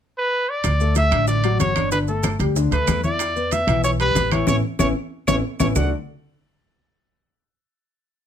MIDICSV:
0, 0, Header, 1, 5, 480
1, 0, Start_track
1, 0, Key_signature, 2, "major"
1, 0, Tempo, 319149
1, 966, Time_signature, 4, 2, 24, 8
1, 12437, End_track
2, 0, Start_track
2, 0, Title_t, "Trumpet"
2, 0, Program_c, 0, 56
2, 270, Note_on_c, 0, 71, 95
2, 745, Note_on_c, 0, 74, 95
2, 768, Note_off_c, 0, 71, 0
2, 1453, Note_off_c, 0, 74, 0
2, 1462, Note_on_c, 0, 76, 101
2, 1899, Note_off_c, 0, 76, 0
2, 1921, Note_on_c, 0, 74, 95
2, 2367, Note_off_c, 0, 74, 0
2, 2406, Note_on_c, 0, 73, 91
2, 2850, Note_off_c, 0, 73, 0
2, 2882, Note_on_c, 0, 71, 90
2, 2990, Note_off_c, 0, 71, 0
2, 3133, Note_on_c, 0, 69, 72
2, 3575, Note_off_c, 0, 69, 0
2, 4097, Note_on_c, 0, 71, 94
2, 4538, Note_off_c, 0, 71, 0
2, 4570, Note_on_c, 0, 74, 93
2, 5297, Note_on_c, 0, 76, 92
2, 5320, Note_off_c, 0, 74, 0
2, 5774, Note_off_c, 0, 76, 0
2, 5782, Note_on_c, 0, 73, 93
2, 5888, Note_off_c, 0, 73, 0
2, 6026, Note_on_c, 0, 71, 105
2, 6499, Note_on_c, 0, 73, 84
2, 6522, Note_off_c, 0, 71, 0
2, 6736, Note_off_c, 0, 73, 0
2, 6745, Note_on_c, 0, 73, 93
2, 6857, Note_off_c, 0, 73, 0
2, 7207, Note_on_c, 0, 73, 90
2, 7324, Note_off_c, 0, 73, 0
2, 7935, Note_on_c, 0, 73, 106
2, 8051, Note_off_c, 0, 73, 0
2, 8416, Note_on_c, 0, 73, 89
2, 8531, Note_off_c, 0, 73, 0
2, 8649, Note_on_c, 0, 78, 84
2, 8876, Note_off_c, 0, 78, 0
2, 12437, End_track
3, 0, Start_track
3, 0, Title_t, "Grand piano"
3, 0, Program_c, 1, 0
3, 1210, Note_on_c, 1, 57, 72
3, 1218, Note_on_c, 1, 69, 76
3, 1600, Note_off_c, 1, 57, 0
3, 1605, Note_off_c, 1, 69, 0
3, 1696, Note_on_c, 1, 50, 75
3, 1703, Note_on_c, 1, 62, 76
3, 2083, Note_off_c, 1, 50, 0
3, 2087, Note_off_c, 1, 62, 0
3, 2171, Note_on_c, 1, 54, 74
3, 2177, Note_on_c, 1, 66, 74
3, 2560, Note_off_c, 1, 54, 0
3, 2564, Note_off_c, 1, 66, 0
3, 2649, Note_on_c, 1, 50, 80
3, 2660, Note_on_c, 1, 62, 84
3, 2842, Note_off_c, 1, 50, 0
3, 2849, Note_off_c, 1, 62, 0
3, 2888, Note_on_c, 1, 62, 73
3, 2889, Note_on_c, 1, 50, 76
3, 3082, Note_off_c, 1, 50, 0
3, 3082, Note_off_c, 1, 62, 0
3, 3124, Note_on_c, 1, 57, 72
3, 3128, Note_on_c, 1, 69, 70
3, 3517, Note_off_c, 1, 57, 0
3, 3520, Note_off_c, 1, 69, 0
3, 3606, Note_on_c, 1, 55, 70
3, 3615, Note_on_c, 1, 67, 71
3, 3802, Note_off_c, 1, 55, 0
3, 3807, Note_off_c, 1, 67, 0
3, 3848, Note_on_c, 1, 50, 83
3, 3851, Note_on_c, 1, 62, 80
3, 4043, Note_off_c, 1, 50, 0
3, 4045, Note_off_c, 1, 62, 0
3, 4084, Note_on_c, 1, 57, 71
3, 4091, Note_on_c, 1, 69, 76
3, 4478, Note_off_c, 1, 57, 0
3, 4482, Note_off_c, 1, 69, 0
3, 4572, Note_on_c, 1, 64, 72
3, 4573, Note_on_c, 1, 76, 71
3, 4964, Note_off_c, 1, 64, 0
3, 4964, Note_off_c, 1, 76, 0
3, 5050, Note_on_c, 1, 71, 73
3, 5052, Note_on_c, 1, 59, 74
3, 5444, Note_off_c, 1, 59, 0
3, 5444, Note_off_c, 1, 71, 0
3, 5527, Note_on_c, 1, 52, 82
3, 5534, Note_on_c, 1, 64, 79
3, 5923, Note_off_c, 1, 52, 0
3, 5926, Note_off_c, 1, 64, 0
3, 6011, Note_on_c, 1, 55, 76
3, 6014, Note_on_c, 1, 67, 73
3, 6405, Note_off_c, 1, 55, 0
3, 6407, Note_off_c, 1, 67, 0
3, 6496, Note_on_c, 1, 52, 84
3, 6507, Note_on_c, 1, 64, 79
3, 6691, Note_off_c, 1, 52, 0
3, 6698, Note_off_c, 1, 64, 0
3, 6728, Note_on_c, 1, 61, 88
3, 6731, Note_on_c, 1, 64, 91
3, 6734, Note_on_c, 1, 59, 82
3, 6884, Note_off_c, 1, 61, 0
3, 6886, Note_off_c, 1, 64, 0
3, 6887, Note_off_c, 1, 59, 0
3, 7213, Note_on_c, 1, 59, 89
3, 7213, Note_on_c, 1, 64, 94
3, 7216, Note_on_c, 1, 61, 94
3, 7367, Note_off_c, 1, 59, 0
3, 7367, Note_off_c, 1, 64, 0
3, 7369, Note_off_c, 1, 61, 0
3, 7932, Note_on_c, 1, 61, 89
3, 7936, Note_on_c, 1, 59, 91
3, 7936, Note_on_c, 1, 64, 96
3, 8088, Note_off_c, 1, 61, 0
3, 8090, Note_off_c, 1, 59, 0
3, 8090, Note_off_c, 1, 64, 0
3, 8417, Note_on_c, 1, 59, 88
3, 8417, Note_on_c, 1, 61, 88
3, 8419, Note_on_c, 1, 64, 83
3, 8571, Note_off_c, 1, 59, 0
3, 8571, Note_off_c, 1, 61, 0
3, 8572, Note_off_c, 1, 64, 0
3, 8654, Note_on_c, 1, 50, 83
3, 8657, Note_on_c, 1, 62, 77
3, 8662, Note_on_c, 1, 57, 83
3, 8665, Note_on_c, 1, 66, 81
3, 8670, Note_on_c, 1, 69, 80
3, 8672, Note_on_c, 1, 74, 90
3, 8878, Note_off_c, 1, 50, 0
3, 8881, Note_off_c, 1, 62, 0
3, 8883, Note_off_c, 1, 57, 0
3, 8884, Note_off_c, 1, 66, 0
3, 8887, Note_off_c, 1, 69, 0
3, 8888, Note_off_c, 1, 74, 0
3, 12437, End_track
4, 0, Start_track
4, 0, Title_t, "Upright bass"
4, 0, Program_c, 2, 32
4, 961, Note_on_c, 2, 38, 92
4, 1630, Note_off_c, 2, 38, 0
4, 1674, Note_on_c, 2, 33, 105
4, 2346, Note_off_c, 2, 33, 0
4, 2397, Note_on_c, 2, 31, 81
4, 3516, Note_off_c, 2, 31, 0
4, 3600, Note_on_c, 2, 38, 102
4, 4048, Note_off_c, 2, 38, 0
4, 4078, Note_on_c, 2, 38, 76
4, 4304, Note_off_c, 2, 38, 0
4, 4328, Note_on_c, 2, 40, 82
4, 5446, Note_off_c, 2, 40, 0
4, 5522, Note_on_c, 2, 35, 101
4, 6197, Note_off_c, 2, 35, 0
4, 6242, Note_on_c, 2, 33, 80
4, 6694, Note_off_c, 2, 33, 0
4, 6724, Note_on_c, 2, 33, 92
4, 6907, Note_off_c, 2, 33, 0
4, 7209, Note_on_c, 2, 33, 88
4, 7390, Note_off_c, 2, 33, 0
4, 7933, Note_on_c, 2, 33, 91
4, 8113, Note_off_c, 2, 33, 0
4, 8420, Note_on_c, 2, 33, 84
4, 8597, Note_off_c, 2, 33, 0
4, 8657, Note_on_c, 2, 38, 90
4, 8880, Note_off_c, 2, 38, 0
4, 12437, End_track
5, 0, Start_track
5, 0, Title_t, "Drums"
5, 960, Note_on_c, 9, 65, 81
5, 960, Note_on_c, 9, 75, 63
5, 964, Note_on_c, 9, 70, 67
5, 970, Note_on_c, 9, 60, 64
5, 972, Note_on_c, 9, 63, 33
5, 1110, Note_off_c, 9, 65, 0
5, 1110, Note_off_c, 9, 75, 0
5, 1114, Note_off_c, 9, 70, 0
5, 1120, Note_off_c, 9, 60, 0
5, 1123, Note_off_c, 9, 63, 0
5, 1204, Note_on_c, 9, 63, 30
5, 1207, Note_on_c, 9, 70, 29
5, 1355, Note_off_c, 9, 63, 0
5, 1358, Note_off_c, 9, 70, 0
5, 1432, Note_on_c, 9, 70, 72
5, 1441, Note_on_c, 9, 63, 55
5, 1442, Note_on_c, 9, 60, 57
5, 1445, Note_on_c, 9, 65, 64
5, 1582, Note_off_c, 9, 70, 0
5, 1591, Note_off_c, 9, 63, 0
5, 1592, Note_off_c, 9, 60, 0
5, 1595, Note_off_c, 9, 65, 0
5, 1677, Note_on_c, 9, 70, 29
5, 1680, Note_on_c, 9, 75, 62
5, 1682, Note_on_c, 9, 63, 35
5, 1685, Note_on_c, 9, 60, 36
5, 1685, Note_on_c, 9, 65, 98
5, 1828, Note_off_c, 9, 70, 0
5, 1830, Note_off_c, 9, 75, 0
5, 1832, Note_off_c, 9, 63, 0
5, 1835, Note_off_c, 9, 60, 0
5, 1836, Note_off_c, 9, 65, 0
5, 1916, Note_on_c, 9, 70, 64
5, 1920, Note_on_c, 9, 60, 65
5, 1933, Note_on_c, 9, 63, 33
5, 2066, Note_off_c, 9, 70, 0
5, 2070, Note_off_c, 9, 60, 0
5, 2083, Note_off_c, 9, 63, 0
5, 2159, Note_on_c, 9, 70, 27
5, 2162, Note_on_c, 9, 65, 72
5, 2172, Note_on_c, 9, 63, 35
5, 2310, Note_off_c, 9, 70, 0
5, 2312, Note_off_c, 9, 65, 0
5, 2323, Note_off_c, 9, 63, 0
5, 2406, Note_on_c, 9, 70, 75
5, 2408, Note_on_c, 9, 63, 88
5, 2409, Note_on_c, 9, 65, 72
5, 2411, Note_on_c, 9, 60, 33
5, 2411, Note_on_c, 9, 61, 81
5, 2556, Note_off_c, 9, 70, 0
5, 2558, Note_off_c, 9, 63, 0
5, 2559, Note_off_c, 9, 65, 0
5, 2561, Note_off_c, 9, 60, 0
5, 2561, Note_off_c, 9, 61, 0
5, 2640, Note_on_c, 9, 75, 64
5, 2644, Note_on_c, 9, 65, 86
5, 2649, Note_on_c, 9, 60, 38
5, 2650, Note_on_c, 9, 63, 85
5, 2653, Note_on_c, 9, 70, 28
5, 2791, Note_off_c, 9, 75, 0
5, 2794, Note_off_c, 9, 65, 0
5, 2799, Note_off_c, 9, 60, 0
5, 2800, Note_off_c, 9, 63, 0
5, 2804, Note_off_c, 9, 70, 0
5, 2880, Note_on_c, 9, 70, 69
5, 2887, Note_on_c, 9, 60, 67
5, 2890, Note_on_c, 9, 65, 60
5, 2891, Note_on_c, 9, 63, 31
5, 3030, Note_off_c, 9, 70, 0
5, 3037, Note_off_c, 9, 60, 0
5, 3040, Note_off_c, 9, 65, 0
5, 3041, Note_off_c, 9, 63, 0
5, 3123, Note_on_c, 9, 70, 30
5, 3133, Note_on_c, 9, 63, 35
5, 3273, Note_off_c, 9, 70, 0
5, 3283, Note_off_c, 9, 63, 0
5, 3356, Note_on_c, 9, 70, 72
5, 3360, Note_on_c, 9, 63, 95
5, 3365, Note_on_c, 9, 75, 70
5, 3369, Note_on_c, 9, 60, 59
5, 3370, Note_on_c, 9, 65, 79
5, 3507, Note_off_c, 9, 70, 0
5, 3510, Note_off_c, 9, 63, 0
5, 3515, Note_off_c, 9, 75, 0
5, 3520, Note_off_c, 9, 60, 0
5, 3520, Note_off_c, 9, 65, 0
5, 3599, Note_on_c, 9, 63, 36
5, 3605, Note_on_c, 9, 70, 30
5, 3613, Note_on_c, 9, 65, 66
5, 3622, Note_on_c, 9, 60, 37
5, 3749, Note_off_c, 9, 63, 0
5, 3756, Note_off_c, 9, 70, 0
5, 3763, Note_off_c, 9, 65, 0
5, 3773, Note_off_c, 9, 60, 0
5, 3850, Note_on_c, 9, 63, 33
5, 3850, Note_on_c, 9, 70, 65
5, 3856, Note_on_c, 9, 60, 68
5, 4000, Note_off_c, 9, 63, 0
5, 4000, Note_off_c, 9, 70, 0
5, 4007, Note_off_c, 9, 60, 0
5, 4090, Note_on_c, 9, 70, 28
5, 4091, Note_on_c, 9, 63, 38
5, 4094, Note_on_c, 9, 65, 70
5, 4240, Note_off_c, 9, 70, 0
5, 4241, Note_off_c, 9, 63, 0
5, 4244, Note_off_c, 9, 65, 0
5, 4322, Note_on_c, 9, 75, 67
5, 4324, Note_on_c, 9, 70, 70
5, 4326, Note_on_c, 9, 63, 83
5, 4326, Note_on_c, 9, 65, 94
5, 4326, Note_on_c, 9, 66, 70
5, 4339, Note_on_c, 9, 60, 35
5, 4339, Note_on_c, 9, 61, 81
5, 4472, Note_off_c, 9, 75, 0
5, 4475, Note_off_c, 9, 70, 0
5, 4477, Note_off_c, 9, 63, 0
5, 4477, Note_off_c, 9, 65, 0
5, 4477, Note_off_c, 9, 66, 0
5, 4490, Note_off_c, 9, 60, 0
5, 4490, Note_off_c, 9, 61, 0
5, 4567, Note_on_c, 9, 70, 30
5, 4573, Note_on_c, 9, 63, 80
5, 4583, Note_on_c, 9, 60, 40
5, 4718, Note_off_c, 9, 70, 0
5, 4723, Note_off_c, 9, 63, 0
5, 4734, Note_off_c, 9, 60, 0
5, 4802, Note_on_c, 9, 65, 86
5, 4806, Note_on_c, 9, 75, 62
5, 4809, Note_on_c, 9, 70, 74
5, 4811, Note_on_c, 9, 63, 34
5, 4825, Note_on_c, 9, 60, 60
5, 4952, Note_off_c, 9, 65, 0
5, 4957, Note_off_c, 9, 75, 0
5, 4960, Note_off_c, 9, 70, 0
5, 4961, Note_off_c, 9, 63, 0
5, 4975, Note_off_c, 9, 60, 0
5, 5058, Note_on_c, 9, 63, 33
5, 5058, Note_on_c, 9, 70, 30
5, 5208, Note_off_c, 9, 63, 0
5, 5209, Note_off_c, 9, 70, 0
5, 5286, Note_on_c, 9, 65, 69
5, 5293, Note_on_c, 9, 70, 73
5, 5296, Note_on_c, 9, 63, 63
5, 5300, Note_on_c, 9, 60, 57
5, 5437, Note_off_c, 9, 65, 0
5, 5443, Note_off_c, 9, 70, 0
5, 5446, Note_off_c, 9, 63, 0
5, 5451, Note_off_c, 9, 60, 0
5, 5528, Note_on_c, 9, 63, 35
5, 5530, Note_on_c, 9, 75, 59
5, 5532, Note_on_c, 9, 65, 95
5, 5542, Note_on_c, 9, 70, 29
5, 5548, Note_on_c, 9, 60, 37
5, 5679, Note_off_c, 9, 63, 0
5, 5680, Note_off_c, 9, 75, 0
5, 5682, Note_off_c, 9, 65, 0
5, 5692, Note_off_c, 9, 70, 0
5, 5698, Note_off_c, 9, 60, 0
5, 5770, Note_on_c, 9, 63, 33
5, 5774, Note_on_c, 9, 70, 67
5, 5781, Note_on_c, 9, 60, 64
5, 5920, Note_off_c, 9, 63, 0
5, 5924, Note_off_c, 9, 70, 0
5, 5931, Note_off_c, 9, 60, 0
5, 6012, Note_on_c, 9, 63, 36
5, 6013, Note_on_c, 9, 65, 66
5, 6019, Note_on_c, 9, 70, 28
5, 6163, Note_off_c, 9, 63, 0
5, 6164, Note_off_c, 9, 65, 0
5, 6170, Note_off_c, 9, 70, 0
5, 6248, Note_on_c, 9, 65, 73
5, 6253, Note_on_c, 9, 63, 81
5, 6255, Note_on_c, 9, 60, 32
5, 6255, Note_on_c, 9, 61, 81
5, 6255, Note_on_c, 9, 70, 76
5, 6398, Note_off_c, 9, 65, 0
5, 6403, Note_off_c, 9, 63, 0
5, 6405, Note_off_c, 9, 60, 0
5, 6405, Note_off_c, 9, 61, 0
5, 6406, Note_off_c, 9, 70, 0
5, 6489, Note_on_c, 9, 75, 65
5, 6490, Note_on_c, 9, 65, 91
5, 6492, Note_on_c, 9, 63, 84
5, 6498, Note_on_c, 9, 60, 37
5, 6498, Note_on_c, 9, 70, 28
5, 6640, Note_off_c, 9, 75, 0
5, 6641, Note_off_c, 9, 65, 0
5, 6642, Note_off_c, 9, 63, 0
5, 6648, Note_off_c, 9, 60, 0
5, 6649, Note_off_c, 9, 70, 0
5, 6720, Note_on_c, 9, 61, 98
5, 6730, Note_on_c, 9, 65, 94
5, 6732, Note_on_c, 9, 63, 99
5, 6733, Note_on_c, 9, 75, 96
5, 6737, Note_on_c, 9, 70, 97
5, 6870, Note_off_c, 9, 61, 0
5, 6880, Note_off_c, 9, 65, 0
5, 6882, Note_off_c, 9, 63, 0
5, 6883, Note_off_c, 9, 75, 0
5, 6887, Note_off_c, 9, 70, 0
5, 7204, Note_on_c, 9, 61, 96
5, 7206, Note_on_c, 9, 63, 93
5, 7210, Note_on_c, 9, 75, 95
5, 7215, Note_on_c, 9, 65, 92
5, 7218, Note_on_c, 9, 70, 90
5, 7355, Note_off_c, 9, 61, 0
5, 7357, Note_off_c, 9, 63, 0
5, 7360, Note_off_c, 9, 75, 0
5, 7365, Note_off_c, 9, 65, 0
5, 7368, Note_off_c, 9, 70, 0
5, 7930, Note_on_c, 9, 75, 96
5, 7937, Note_on_c, 9, 63, 95
5, 7939, Note_on_c, 9, 61, 85
5, 7940, Note_on_c, 9, 70, 102
5, 7942, Note_on_c, 9, 65, 101
5, 8080, Note_off_c, 9, 75, 0
5, 8088, Note_off_c, 9, 63, 0
5, 8089, Note_off_c, 9, 61, 0
5, 8090, Note_off_c, 9, 70, 0
5, 8093, Note_off_c, 9, 65, 0
5, 8416, Note_on_c, 9, 75, 98
5, 8421, Note_on_c, 9, 63, 104
5, 8421, Note_on_c, 9, 70, 103
5, 8425, Note_on_c, 9, 61, 108
5, 8425, Note_on_c, 9, 65, 88
5, 8567, Note_off_c, 9, 75, 0
5, 8571, Note_off_c, 9, 63, 0
5, 8571, Note_off_c, 9, 70, 0
5, 8575, Note_off_c, 9, 61, 0
5, 8576, Note_off_c, 9, 65, 0
5, 8659, Note_on_c, 9, 70, 96
5, 8659, Note_on_c, 9, 75, 98
5, 8660, Note_on_c, 9, 61, 95
5, 8660, Note_on_c, 9, 66, 88
5, 8662, Note_on_c, 9, 64, 101
5, 8809, Note_off_c, 9, 70, 0
5, 8809, Note_off_c, 9, 75, 0
5, 8811, Note_off_c, 9, 61, 0
5, 8811, Note_off_c, 9, 66, 0
5, 8813, Note_off_c, 9, 64, 0
5, 12437, End_track
0, 0, End_of_file